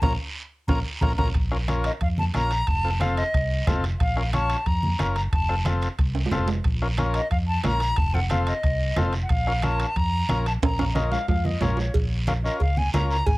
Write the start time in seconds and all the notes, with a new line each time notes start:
0.02 A#1 C#4 F4 A#4 A#5, bombo low, high conga, high timbale, long guiro
0.68 A#1 C#4 F4 A#4 A#5, bombo low, high conga, high timbale, long guiro
1.01 A#1 C#4 F4 A#4 A#5, bombo low, high conga, high timbale, long guiro
1.17 A#1 C#4 F4 A#4 A#5, bombo low, high conga, high timbale, long guiro
1.34 A#1, bombo low, high timbale, long guiro
1.51 C#4 F4 A#4, bombo rim
1.68 C#4 F4 A#4, bombo rim, high conga, high timbale, short guiro
1.84 D#5, high timbale, short guiro
2.01 F2 F5, bombo low, high timbale, long guiro
2.18 A5, high conga
2.34 A#1 C#4 F4 A#4 A#5, bombo rim, high conga, high timbale, short guiro
2.51 high timbale, short guiro
2.67 F1 A5, bombo low, high timbale, long guiro
2.84 C4 F4 A4
3.00 C4 F4 A4 F5, bombo rim, high conga, high timbale, short guiro
3.17 D#5, high timbale, short guiro
3.34 C2, bombo low, high timbale, long guiro
3.67 F1 C4 F4 A4, bombo low, bombo rim, high conga, low conga, high timbale, low timbale, short guiro
3.84 high timbale, short guiro
3.99 A#1 F5, bombo low, high timbale, long guiro
4.16 C#4 F4 A#4, bombo rim
4.33 C#4 F4 C#5 A5, bombo rim, high conga, high timbale, short guiro
4.50 high timbale, short guiro
4.66 F2 A#5, bombo low, high timbale, long guiro
4.83 high conga
4.99 F#1 C#4 F4 A#4, bombo rim, high conga, high timbale, short guiro
5.16 A#5, high timbale, short guiro
5.32 F1 A5, bombo low, high timbale, long guiro
5.49 C4 F4 A4, bombo rim
5.65 C4 F4 A4, bombo rim, high conga, high timbale, short guiro
5.82 high timbale, short guiro
5.99 C2, bombo low, high timbale, long guiro
6.15 high timbale
6.26 low timbale
6.31 F1 C4 F4 A4, bombo rim, high conga, low conga, short guiro
6.37 low timbale
6.48 low timbale, short guiro
6.64 A#1, bombo low, high timbale, long guiro
6.82 C#4 F4 A#4, bombo rim
6.98 C#4 F4 A#4, bombo rim, high conga, high timbale, short guiro
7.14 D#5, high timbale, short guiro
7.31 F2 F5, bombo low, high timbale, long guiro
7.48 A5
7.64 A#1 C#4 F4 A#4 A#5, bombo rim, high conga, high timbale, low timbale, short guiro
7.80 high timbale, short guiro
7.96 F1 A5, bombo low, high timbale, long guiro
8.14 C4 F4 A4 F#5, low conga
8.30 C4 F4 A4 F5, bombo rim, high conga, high timbale, short guiro
8.47 D#5, high timbale, short guiro
8.63 C2, bombo low, high timbale, long guiro
8.96 F1 C4 F4 A4, bombo rim, high conga, low conga, high timbale, low timbale, short guiro
9.13 high timbale, short guiro
9.23 F#5
9.29 A#1 F5, bombo low, high timbale, long guiro
9.47 C#4 F4 A#4, bombo rim
9.62 C#4 F4 A#4 A5, bombo rim, high conga, high timbale, short guiro
9.80 high timbale, short guiro
9.96 F2 A#5, bombo low, high timbale, long guiro
10.29 A#1 C#4 F4 A#4, bombo rim, high conga, high timbale, short guiro
10.46 A5, high timbale, short guiro
10.62 A#1 A#5, bombo low, high timbale, long guiro
10.79 C#4 F4 A#4, bombo rim, low conga, high timbale
10.95 C#4 F4 A#4 D#5, bombo rim, high conga, high timbale, short guiro
11.12 F5, low timbale, short guiro
11.28 F2 F5, bombo low, low timbale, long guiro
11.45 D#5, high conga, low timbale
11.61 A#1 C#4 F4 A#4 C#5, bombo rim, high conga, low conga, low timbale, short guiro
11.77 low timbale, short guiro
11.94 A#1, bombo low, cowbell, long guiro
12.27 C#4 F4 A#4 F5, bombo rim, cowbell, high conga, short guiro
12.44 C#4 F4 A#4 D#5, short guiro
12.60 C#2 F5, bombo low, cowbell, long guiro
12.77 G#5, high conga
12.94 C#2 C#4 F4 A#4 A#5, bombo rim, cowbell, high conga, low timbale, short guiro
13.10 A#5, short guiro
13.26 G#1 G#5, bombo low, cowbell, long guiro